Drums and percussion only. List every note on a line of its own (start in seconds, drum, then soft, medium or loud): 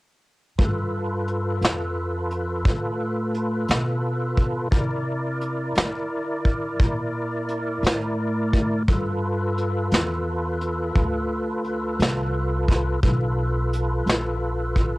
0.59 kick loud
0.59 closed hi-hat medium
1.28 closed hi-hat medium
1.62 snare medium
1.62 closed hi-hat medium
2.31 closed hi-hat medium
2.65 kick loud
2.65 snare soft
2.65 closed hi-hat medium
3.34 closed hi-hat soft
3.68 snare loud
3.68 closed hi-hat medium
4.37 kick medium
4.37 closed hi-hat medium
4.72 kick loud
4.72 closed hi-hat medium
5.41 closed hi-hat medium
5.75 snare medium
5.75 closed hi-hat medium
6.45 kick medium
6.45 closed hi-hat soft
6.80 kick loud
6.80 closed hi-hat medium
7.49 closed hi-hat soft
7.84 snare medium
7.84 closed hi-hat medium
8.53 kick medium
8.53 closed hi-hat medium
8.88 kick loud
8.88 closed hi-hat medium
9.57 closed hi-hat medium
9.91 snare medium
9.91 closed hi-hat medium
10.61 closed hi-hat medium
10.95 kick medium
10.95 closed hi-hat medium
11.64 closed hi-hat soft
12.00 snare medium
12.00 closed hi-hat medium
12.68 kick medium
12.68 snare soft
12.68 closed hi-hat medium
13.03 kick medium
13.03 closed hi-hat medium
13.73 closed hi-hat medium
14.07 snare medium
14.07 closed hi-hat medium
14.76 kick medium
14.76 closed hi-hat soft